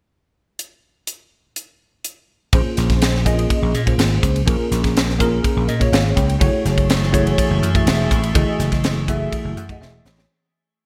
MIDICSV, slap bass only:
0, 0, Header, 1, 3, 480
1, 0, Start_track
1, 0, Tempo, 485437
1, 584, Time_signature, 4, 2, 24, 8
1, 10737, End_track
2, 0, Start_track
2, 0, Title_t, "Slap bass"
2, 0, Program_c, 0, 36
2, 2499, Note_on_c, 0, 34, 87
2, 2598, Note_off_c, 0, 34, 0
2, 2746, Note_on_c, 0, 34, 86
2, 3411, Note_off_c, 0, 34, 0
2, 3583, Note_on_c, 0, 34, 79
2, 3677, Note_off_c, 0, 34, 0
2, 3699, Note_on_c, 0, 46, 80
2, 3891, Note_off_c, 0, 46, 0
2, 3934, Note_on_c, 0, 32, 90
2, 4128, Note_off_c, 0, 32, 0
2, 4181, Note_on_c, 0, 37, 69
2, 4372, Note_off_c, 0, 37, 0
2, 4422, Note_on_c, 0, 34, 87
2, 4519, Note_off_c, 0, 34, 0
2, 4660, Note_on_c, 0, 34, 86
2, 5327, Note_off_c, 0, 34, 0
2, 5504, Note_on_c, 0, 34, 78
2, 5597, Note_off_c, 0, 34, 0
2, 5619, Note_on_c, 0, 46, 83
2, 5809, Note_off_c, 0, 46, 0
2, 5855, Note_on_c, 0, 32, 88
2, 6047, Note_off_c, 0, 32, 0
2, 6098, Note_on_c, 0, 37, 76
2, 6289, Note_off_c, 0, 37, 0
2, 6339, Note_on_c, 0, 30, 88
2, 6436, Note_off_c, 0, 30, 0
2, 6577, Note_on_c, 0, 30, 88
2, 7244, Note_off_c, 0, 30, 0
2, 7419, Note_on_c, 0, 30, 87
2, 7513, Note_off_c, 0, 30, 0
2, 7532, Note_on_c, 0, 42, 80
2, 7725, Note_off_c, 0, 42, 0
2, 7775, Note_on_c, 0, 28, 94
2, 7967, Note_off_c, 0, 28, 0
2, 8019, Note_on_c, 0, 33, 76
2, 8210, Note_off_c, 0, 33, 0
2, 8258, Note_on_c, 0, 30, 95
2, 8356, Note_off_c, 0, 30, 0
2, 8494, Note_on_c, 0, 30, 87
2, 9164, Note_off_c, 0, 30, 0
2, 9338, Note_on_c, 0, 30, 80
2, 9434, Note_off_c, 0, 30, 0
2, 9456, Note_on_c, 0, 42, 77
2, 9648, Note_off_c, 0, 42, 0
2, 9692, Note_on_c, 0, 28, 87
2, 9887, Note_off_c, 0, 28, 0
2, 9937, Note_on_c, 0, 33, 72
2, 10130, Note_off_c, 0, 33, 0
2, 10737, End_track
3, 0, Start_track
3, 0, Title_t, "Muted slap bass strokes"
3, 6461, Note_on_c, 9, 29, 35
3, 6560, Note_off_c, 9, 29, 0
3, 10737, End_track
0, 0, End_of_file